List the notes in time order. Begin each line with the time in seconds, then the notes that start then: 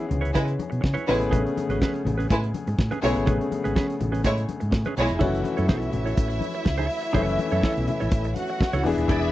Already playing: E3 B3 C#4 G#4
0.00 closed hi-hat
0.08 C#2, muted clean electric guitar stroke, closed hi-hat, low conga
0.21 E4 B4 C#5
0.25 closed hi-hat
0.33 C#3 G#3 E4 B4, muted clean electric guitar stroke, kick, closed hi-hat, muted conga
0.45 muted clean electric guitar stroke, closed hi-hat
0.59 closed hi-hat, muted conga, high conga
0.70 B2, muted clean electric guitar stroke, closed hi-hat
0.81 C#3, muted clean electric guitar stroke, kick, snare
0.94 E4 B4 C#5, closed hi-hat, high conga
1.07 A1 C#3 G#3 A3 B3 E4 B4, muted clean electric guitar stroke, open hi-hat, muted conga
1.11 G#4
1.20 G#1, muted clean electric guitar stroke, closed hi-hat
1.31 A1 C#4 G#4 B4, kick, closed hi-hat, low conga
1.45 muted clean electric guitar stroke, closed hi-hat
1.57 muted clean electric guitar stroke, closed hi-hat, muted conga, high conga
1.69 G#1 C#4 G#4 B4, closed hi-hat
1.82 C#4 G#4 B4, kick, snare, high conga
1.95 muted clean electric guitar stroke, closed hi-hat
2.05 A1, muted clean electric guitar stroke, closed hi-hat, muted conga, low conga
2.18 C#4 G#4 B4, closed hi-hat
2.29 A2 G#3 E4 B4, muted clean electric guitar stroke, kick, closed hi-hat
2.42 muted clean electric guitar stroke, closed hi-hat
2.54 closed hi-hat, muted conga, high conga
2.67 G#2, muted clean electric guitar stroke, closed hi-hat
2.79 A2, muted clean electric guitar stroke, kick, snare
2.91 C#4 G#4 B4, closed hi-hat, high conga
3.01 B1 C#3 G#3 A3 B3 E4 G#4 C#5, muted clean electric guitar stroke, open hi-hat
3.15 G#1, muted clean electric guitar stroke, closed hi-hat
3.26 A1 C#4 G#4 B4, kick, closed hi-hat, muted conga, low conga
3.40 muted clean electric guitar stroke, closed hi-hat
3.51 muted clean electric guitar stroke, closed hi-hat, muted conga, high conga
3.64 G#1 C#4 G#4 B4, closed hi-hat
3.76 C#4 G#4 B4, kick, snare, muted conga, high conga
3.89 muted clean electric guitar stroke, closed hi-hat
4.00 A1, muted clean electric guitar stroke, closed hi-hat, muted conga, low conga
4.12 C#4 G#4 B4, closed hi-hat
4.24 A2 G#3 E4 C#5, muted clean electric guitar stroke, kick, closed hi-hat, muted conga, high conga
4.37 muted clean electric guitar stroke, closed hi-hat
4.49 closed hi-hat, muted conga, high conga
4.60 G#2, muted clean electric guitar stroke, closed hi-hat
4.71 A2, muted clean electric guitar stroke, kick, snare, muted conga
4.85 C#4 G#4 B4, closed hi-hat, high conga
4.97 B1 G#3 E4 C#5, open hi-hat
5.09 F1, muted clean electric guitar stroke, closed hi-hat
5.19 F#1 E3 A3 C#4 E4 F#4 A4 C#5 E5, kick, crash, muted conga, low conga
5.33 muted clean electric guitar stroke, closed hi-hat
5.44 muted clean electric guitar stroke, closed hi-hat, high conga
5.57 F#2 E4 A4 C#5, closed hi-hat
5.68 B1 E4 A4 C#5, kick, snare, muted conga, high conga
5.81 muted clean electric guitar stroke, closed hi-hat
5.93 A1, muted clean electric guitar stroke, closed hi-hat, muted conga, low conga
6.06 E4 A4 C#5, closed hi-hat
6.16 A1, muted clean electric guitar stroke, kick, closed hi-hat, muted conga
6.28 muted clean electric guitar stroke, snare, closed hi-hat
6.41 closed hi-hat, muted conga, high conga
6.54 muted clean electric guitar stroke, closed hi-hat
6.65 C#2, muted clean electric guitar stroke, kick, snare, muted conga
6.78 E4 A4 C#5, closed hi-hat, high conga
6.90 open hi-hat
7.02 muted clean electric guitar stroke, closed hi-hat
7.13 F#1 E3 A3 C#4 E4 A4 C#5, kick, closed hi-hat, low conga
7.27 muted clean electric guitar stroke, closed hi-hat
7.39 muted clean electric guitar stroke, closed hi-hat, high conga
7.52 F#2 E4 A4 C#5, closed hi-hat
7.63 E4 A4 C#5, kick, snare, high conga
7.76 B1, muted clean electric guitar stroke, closed hi-hat
7.87 muted clean electric guitar stroke, closed hi-hat, low conga
8.00 A1 E4 A4 C#5, closed hi-hat
8.11 A1, kick, closed hi-hat, muted conga
8.24 muted clean electric guitar stroke, closed hi-hat
8.36 F#4 F#5, closed hi-hat, high conga
8.48 muted clean electric guitar stroke, closed hi-hat
8.61 muted clean electric guitar stroke, kick, snare
8.73 C#2 E4 A4 C#5, closed hi-hat, high conga
8.83 E1 E3 B3 D4 E4 G#4 E5, muted clean electric guitar stroke, open hi-hat, muted conga
8.97 D#1, muted clean electric guitar stroke, closed hi-hat
9.08 E1 E4 G#4 D5 E5 B5, kick, closed hi-hat, low conga
9.22 muted clean electric guitar stroke, closed hi-hat